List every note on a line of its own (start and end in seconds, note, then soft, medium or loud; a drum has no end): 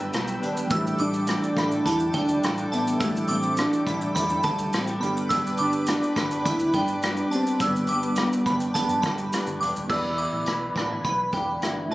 0.00 0.70 G2 medium
0.00 0.98 G3 medium
0.00 0.12 B3 medium
0.00 0.37 B3 medium
0.00 0.11 D4 loud
0.00 0.38 D4 medium
0.00 0.41 D4 medium
0.00 0.40 A4 medium
0.00 0.68 B4 medium
0.00 9.85 G5 medium
0.00 0.68 E6 loud
0.13 0.37 B1 medium
0.13 0.76 B3 medium
0.13 cross-stick loud
0.13 closed hi-hat medium
0.13 shaker medium
0.27 shaker soft
0.40 0.65 G#1 medium
0.40 0.70 B3 medium
0.40 0.70 D4 medium
0.40 0.71 G4 medium
0.40 closed hi-hat soft
0.40 shaker medium
0.57 shaker medium
0.67 0.94 A1 medium
0.67 2.99 A2 medium
0.67 2.95 E3 medium
0.67 2.95 G3 medium
0.67 2.96 A3 medium
0.67 2.97 D4 medium
0.67 1.55 E4 medium
0.67 4.98 A4 medium
0.67 4.98 D6 medium
0.67 kick loud
0.67 closed hi-hat medium
0.67 shaker medium
0.72 0.78 F#4 medium
0.72 0.99 E6 loud
0.79 3.01 G4 medium
0.87 shaker medium
0.98 1.34 A1 loud
0.98 2.13 G3 medium
0.98 1.27 D4 loud
0.98 1.27 D6 medium
0.98 closed hi-hat soft
0.98 shaker soft
1.14 shaker medium
1.27 1.85 D4 medium
1.27 1.88 D4 loud
1.27 cross-stick loud
1.27 closed hi-hat medium
1.27 shaker medium
1.43 shaker medium
1.57 1.80 A1 loud
1.57 2.70 E4 medium
1.57 1.85 B5 medium
1.57 kick medium
1.57 cross-stick medium
1.57 closed hi-hat soft
1.57 shaker medium
1.71 shaker medium
1.85 2.09 E2 loud
1.85 2.41 D4 medium
1.85 2.17 E4 loud
1.85 2.13 A5 loud
1.85 kick medium
1.85 closed hi-hat loud
1.85 shaker loud
2.00 shaker medium
2.13 2.37 D2 medium
2.13 3.29 G3 medium
2.13 2.75 D4 loud
2.13 2.28 G5 medium
2.13 kick medium
2.13 closed hi-hat medium
2.13 shaker medium
2.29 shaker medium
2.42 2.66 A1 loud
2.42 3.57 D4 medium
2.42 cross-stick loud
2.42 closed hi-hat medium
2.42 shaker medium
2.58 shaker soft
2.71 2.95 A1 medium
2.71 3.01 B3 loud
2.71 2.99 E4 medium
2.71 2.86 A5 medium
2.71 closed hi-hat soft
2.71 shaker medium
2.87 shaker medium
2.98 3.24 A1 loud
2.98 5.01 A2 medium
2.98 4.96 E3 medium
2.98 4.97 G3 medium
2.98 4.97 A3 medium
2.98 4.98 D4 medium
2.98 3.86 E4 medium
2.98 3.28 E6 loud
2.98 kick loud
2.98 closed hi-hat medium
2.98 shaker medium
3.02 3.32 A3 loud
3.02 4.99 G4 medium
3.17 shaker medium
3.28 3.64 A1 loud
3.28 4.44 G3 medium
3.28 3.61 C4 loud
3.28 3.56 D6 loud
3.28 closed hi-hat medium
3.28 shaker soft
3.43 shaker medium
3.57 4.16 D4 medium
3.57 4.73 D4 loud
3.57 cross-stick loud
3.57 closed hi-hat medium
3.57 shaker medium
3.73 shaker soft
3.87 4.10 A1 loud
3.87 5.07 E4 medium
3.87 4.14 B5 medium
3.87 kick medium
3.87 closed hi-hat soft
3.87 shaker medium
4.01 shaker medium
4.15 4.39 E2 loud
4.15 4.73 D4 medium
4.15 4.42 B5 loud
4.15 kick medium
4.15 closed hi-hat medium
4.15 shaker medium
4.30 shaker medium
4.43 4.67 D2 medium
4.43 5.59 G3 medium
4.43 4.58 A5 medium
4.43 kick loud
4.43 closed hi-hat medium
4.43 shaker medium
4.58 shaker medium
4.73 4.96 A1 loud
4.73 4.88 C4 medium
4.73 cross-stick loud
4.73 closed hi-hat medium
4.73 shaker medium
4.87 5.08 D4 medium
4.87 shaker soft
5.00 5.48 G1 loud
5.00 5.30 G2 medium
5.00 7.26 B3 medium
5.00 7.28 D4 medium
5.00 9.85 B4 medium
5.00 5.15 B5 medium
5.00 9.85 D6 medium
5.00 closed hi-hat soft
5.00 shaker soft
5.05 7.29 G4 medium
5.17 shaker medium
5.29 7.60 G2 medium
5.29 6.17 D4 medium
5.29 5.57 E6 medium
5.29 kick loud
5.29 closed hi-hat medium
5.29 shaker medium
5.47 shaker medium
5.57 5.94 G1 loud
5.57 6.75 G3 medium
5.57 5.73 D4 loud
5.57 5.86 D6 medium
5.57 closed hi-hat medium
5.57 shaker soft
5.73 shaker medium
5.87 6.46 B3 medium
5.87 6.49 D4 loud
5.87 cross-stick loud
5.87 closed hi-hat medium
5.87 shaker medium
6.03 shaker medium
6.16 6.39 G1 loud
6.16 7.32 D4 medium
6.16 6.43 B5 medium
6.16 kick medium
6.16 cross-stick medium
6.16 closed hi-hat medium
6.16 shaker medium
6.31 shaker medium
6.45 6.68 D2 loud
6.45 7.02 B3 medium
6.45 6.75 E4 loud
6.45 6.73 B5 loud
6.45 kick medium
6.45 closed hi-hat medium
6.45 shaker medium
6.59 shaker medium
6.73 7.20 G2 medium
6.73 7.90 G3 medium
6.73 7.29 D4 loud
6.73 6.88 G5 medium
6.73 kick medium
6.73 closed hi-hat medium
6.73 shaker medium
6.88 shaker medium
7.03 8.18 B3 medium
7.03 cross-stick loud
7.03 closed hi-hat medium
7.03 shaker medium
7.17 shaker soft
7.29 9.56 B3 medium
7.29 9.57 D4 medium
7.29 7.61 D4 medium
7.29 7.45 A5 medium
7.29 closed hi-hat medium
7.29 shaker soft
7.34 7.64 C4 loud
7.34 9.58 G4 medium
7.47 shaker medium
7.60 7.83 G1 loud
7.60 9.90 G2 medium
7.60 9.33 B3 loud
7.60 8.47 D4 medium
7.60 7.89 E6 medium
7.60 kick loud
7.60 closed hi-hat medium
7.60 shaker medium
7.76 shaker medium
7.87 8.23 G1 medium
7.87 9.05 G3 medium
7.87 8.16 D6 loud
7.87 closed hi-hat soft
7.87 shaker soft
8.03 shaker medium
8.16 8.75 B3 medium
8.16 cross-stick loud
8.16 closed hi-hat medium
8.16 shaker medium
8.33 shaker medium
8.46 8.69 G1 loud
8.46 9.61 D4 medium
8.46 8.75 B5 medium
8.46 kick medium
8.46 closed hi-hat medium
8.46 shaker soft
8.60 shaker medium
8.74 9.34 B3 medium
8.74 9.02 A5 loud
8.74 kick medium
8.74 closed hi-hat medium
8.74 shaker medium
8.89 9.00 G2 loud
8.89 shaker medium
9.02 9.15 D2 medium
9.02 9.96 G3 medium
9.02 9.16 B5 medium
9.02 kick loud
9.02 cross-stick loud
9.02 closed hi-hat medium
9.02 shaker medium
9.18 9.29 G1 medium
9.18 shaker medium
9.33 9.96 B3 medium
9.33 cross-stick loud
9.33 closed hi-hat medium
9.33 shaker medium
9.47 9.58 G1 loud
9.47 shaker soft
9.61 9.72 E1 medium
9.61 9.95 D4 medium
9.61 9.74 D6 medium
9.61 closed hi-hat medium
9.61 shaker soft
9.75 9.87 D#1 loud
9.75 shaker medium
9.88 10.24 E1 medium
9.88 11.91 E3 medium
9.88 11.86 B3 medium
9.88 11.87 E4 medium
9.88 11.87 G4 medium
9.88 10.46 B4 medium
9.88 10.18 E6 medium
9.88 kick medium
9.88 crash medium
9.93 11.88 D5 medium
10.17 10.76 E4 medium
10.17 10.45 D6 medium
10.17 closed hi-hat soft
10.33 10.44 A1 medium
10.46 10.70 B1 medium
10.46 11.03 B4 medium
10.46 cross-stick medium
10.46 closed hi-hat medium
10.76 10.99 A1 medium
10.76 10.90 D4 medium
10.76 11.03 B5 medium
10.76 kick medium
10.76 cross-stick medium
10.76 closed hi-hat soft
10.90 11.61 E4 soft
11.04 11.28 B1 medium
11.04 11.95 B4 medium
11.04 11.32 B5 medium
11.04 kick medium
11.04 closed hi-hat medium
11.32 11.56 E1 medium
11.32 11.95 D4 medium
11.32 11.47 G5 medium
11.32 kick medium
11.32 closed hi-hat medium
11.62 11.85 G1 medium
11.62 11.95 E4 medium
11.62 cross-stick medium
11.62 closed hi-hat medium
11.88 11.95 F#1 medium
11.88 11.95 F#3 medium
11.88 11.95 A3 medium
11.88 11.95 E4 medium
11.88 11.95 F#4 medium
11.88 11.95 A5 medium